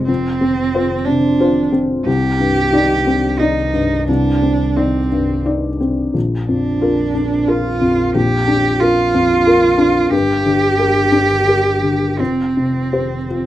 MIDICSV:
0, 0, Header, 1, 4, 480
1, 0, Start_track
1, 0, Tempo, 662252
1, 63, Time_signature, 3, 2, 24, 8
1, 2463, Tempo, 684932
1, 4863, Tempo, 660793
1, 7743, Tempo, 688073
1, 8223, Tempo, 726392
1, 9534, End_track
2, 0, Start_track
2, 0, Title_t, "Felt piano"
2, 0, Program_c, 0, 0
2, 0, Control_c, 0, 64, 127
2, 0, Note_on_c, 0, 41, 40
2, 0, Note_on_c, 0, 48, 35
2, 0, Note_on_c, 0, 60, 34
2, 0, Note_on_c, 0, 65, 36
2, 0, Note_on_c, 0, 72, 43
2, 57, Note_off_c, 0, 41, 0
2, 57, Note_on_c, 0, 41, 43
2, 75, Control_c, 0, 64, 0
2, 78, Note_off_c, 0, 72, 0
2, 79, Note_off_c, 0, 60, 0
2, 81, Note_off_c, 0, 65, 0
2, 175, Control_c, 0, 64, 127
2, 208, Note_off_c, 0, 48, 0
2, 297, Note_on_c, 0, 60, 41
2, 540, Note_on_c, 0, 65, 42
2, 543, Note_on_c, 0, 72, 44
2, 681, Note_off_c, 0, 60, 0
2, 754, Note_off_c, 0, 65, 0
2, 756, Note_off_c, 0, 72, 0
2, 778, Note_on_c, 0, 48, 42
2, 1015, Note_on_c, 0, 65, 45
2, 1020, Note_on_c, 0, 72, 45
2, 1161, Note_off_c, 0, 48, 0
2, 1232, Note_off_c, 0, 65, 0
2, 1235, Note_off_c, 0, 72, 0
2, 1250, Note_on_c, 0, 60, 38
2, 1467, Note_off_c, 0, 41, 0
2, 1495, Note_off_c, 0, 60, 0
2, 1497, Note_on_c, 0, 36, 46
2, 1512, Control_c, 0, 64, 0
2, 1651, Control_c, 0, 64, 127
2, 1738, Note_on_c, 0, 43, 38
2, 1977, Note_on_c, 0, 63, 39
2, 1982, Note_on_c, 0, 74, 45
2, 2123, Note_off_c, 0, 43, 0
2, 2195, Note_off_c, 0, 63, 0
2, 2198, Note_off_c, 0, 74, 0
2, 2222, Note_on_c, 0, 60, 37
2, 2467, Note_on_c, 0, 63, 42
2, 2470, Note_on_c, 0, 74, 39
2, 2607, Note_off_c, 0, 60, 0
2, 2680, Note_off_c, 0, 63, 0
2, 2682, Note_off_c, 0, 74, 0
2, 2699, Note_on_c, 0, 43, 36
2, 2913, Note_off_c, 0, 36, 0
2, 2944, Note_on_c, 0, 36, 43
2, 2955, Control_c, 0, 64, 0
2, 3080, Control_c, 0, 64, 127
2, 3085, Note_off_c, 0, 43, 0
2, 3182, Note_on_c, 0, 60, 32
2, 3422, Note_on_c, 0, 74, 39
2, 3423, Note_on_c, 0, 63, 31
2, 3568, Note_off_c, 0, 60, 0
2, 3640, Note_off_c, 0, 63, 0
2, 3640, Note_off_c, 0, 74, 0
2, 3669, Note_on_c, 0, 43, 33
2, 3904, Note_on_c, 0, 63, 32
2, 3907, Note_on_c, 0, 74, 39
2, 4055, Note_off_c, 0, 43, 0
2, 4124, Note_off_c, 0, 63, 0
2, 4125, Note_off_c, 0, 74, 0
2, 4149, Note_on_c, 0, 60, 31
2, 4363, Note_off_c, 0, 36, 0
2, 4384, Note_on_c, 0, 34, 37
2, 4390, Note_off_c, 0, 60, 0
2, 4403, Control_c, 0, 64, 0
2, 4519, Control_c, 0, 64, 127
2, 4626, Note_on_c, 0, 41, 34
2, 4855, Note_on_c, 0, 65, 36
2, 4859, Note_on_c, 0, 70, 45
2, 5009, Note_off_c, 0, 41, 0
2, 5077, Note_off_c, 0, 65, 0
2, 5079, Note_off_c, 0, 70, 0
2, 5100, Note_on_c, 0, 62, 38
2, 5338, Note_on_c, 0, 65, 43
2, 5339, Note_on_c, 0, 70, 43
2, 5489, Note_off_c, 0, 62, 0
2, 5560, Note_off_c, 0, 65, 0
2, 5561, Note_off_c, 0, 70, 0
2, 5580, Note_on_c, 0, 41, 41
2, 5799, Note_off_c, 0, 34, 0
2, 5824, Note_on_c, 0, 34, 51
2, 5843, Control_c, 0, 64, 0
2, 5962, Control_c, 0, 64, 127
2, 5971, Note_off_c, 0, 41, 0
2, 6064, Note_on_c, 0, 62, 43
2, 6305, Note_on_c, 0, 65, 45
2, 6308, Note_on_c, 0, 70, 46
2, 6450, Note_off_c, 0, 62, 0
2, 6522, Note_off_c, 0, 65, 0
2, 6524, Note_off_c, 0, 70, 0
2, 6549, Note_on_c, 0, 41, 50
2, 6783, Note_on_c, 0, 65, 46
2, 6784, Note_on_c, 0, 70, 54
2, 6928, Note_off_c, 0, 41, 0
2, 6997, Note_off_c, 0, 65, 0
2, 6998, Note_off_c, 0, 70, 0
2, 7009, Note_on_c, 0, 62, 44
2, 7228, Note_off_c, 0, 34, 0
2, 7252, Note_on_c, 0, 43, 53
2, 7254, Note_off_c, 0, 62, 0
2, 7276, Control_c, 0, 64, 0
2, 7376, Control_c, 0, 64, 127
2, 7501, Note_on_c, 0, 50, 43
2, 7742, Note_on_c, 0, 70, 49
2, 7743, Note_on_c, 0, 67, 44
2, 7886, Note_off_c, 0, 50, 0
2, 7957, Note_off_c, 0, 70, 0
2, 7958, Note_off_c, 0, 67, 0
2, 7974, Note_on_c, 0, 62, 40
2, 8221, Note_on_c, 0, 70, 39
2, 8223, Note_on_c, 0, 67, 38
2, 8360, Note_off_c, 0, 62, 0
2, 8433, Note_off_c, 0, 70, 0
2, 8434, Note_off_c, 0, 67, 0
2, 8455, Note_on_c, 0, 50, 29
2, 8667, Note_off_c, 0, 43, 0
2, 8696, Note_off_c, 0, 50, 0
2, 8698, Note_on_c, 0, 41, 35
2, 8711, Control_c, 0, 64, 0
2, 8823, Control_c, 0, 64, 127
2, 8946, Note_on_c, 0, 48, 28
2, 9183, Note_on_c, 0, 67, 30
2, 9184, Note_on_c, 0, 72, 33
2, 9331, Note_off_c, 0, 48, 0
2, 9400, Note_off_c, 0, 67, 0
2, 9400, Note_off_c, 0, 72, 0
2, 9431, Note_on_c, 0, 65, 30
2, 9534, Note_off_c, 0, 41, 0
2, 9534, Note_off_c, 0, 65, 0
2, 9534, End_track
3, 0, Start_track
3, 0, Title_t, "Cello"
3, 0, Program_c, 1, 42
3, 47, Note_on_c, 1, 60, 77
3, 768, Note_on_c, 1, 62, 61
3, 779, Note_off_c, 1, 60, 0
3, 1252, Note_off_c, 1, 62, 0
3, 1490, Note_on_c, 1, 67, 96
3, 2458, Note_on_c, 1, 63, 69
3, 2469, Note_off_c, 1, 67, 0
3, 2933, Note_off_c, 1, 63, 0
3, 2937, Note_on_c, 1, 62, 73
3, 3422, Note_on_c, 1, 60, 54
3, 3432, Note_off_c, 1, 62, 0
3, 3906, Note_off_c, 1, 60, 0
3, 4625, Note_on_c, 1, 62, 60
3, 5344, Note_on_c, 1, 65, 72
3, 5355, Note_off_c, 1, 62, 0
3, 5827, Note_off_c, 1, 65, 0
3, 5831, Note_on_c, 1, 67, 101
3, 6298, Note_on_c, 1, 65, 94
3, 6309, Note_off_c, 1, 67, 0
3, 7247, Note_on_c, 1, 67, 102
3, 7258, Note_off_c, 1, 65, 0
3, 8699, Note_on_c, 1, 60, 65
3, 8708, Note_off_c, 1, 67, 0
3, 9534, Note_off_c, 1, 60, 0
3, 9534, End_track
4, 0, Start_track
4, 0, Title_t, "Double bass"
4, 0, Program_c, 2, 43
4, 0, Note_on_c, 2, 29, 48
4, 1499, Note_on_c, 2, 36, 60
4, 1509, Note_off_c, 2, 29, 0
4, 4385, Note_on_c, 2, 34, 50
4, 4395, Note_off_c, 2, 36, 0
4, 7254, Note_on_c, 2, 31, 64
4, 7265, Note_off_c, 2, 34, 0
4, 8699, Note_on_c, 2, 29, 47
4, 8709, Note_off_c, 2, 31, 0
4, 9534, Note_off_c, 2, 29, 0
4, 9534, End_track
0, 0, End_of_file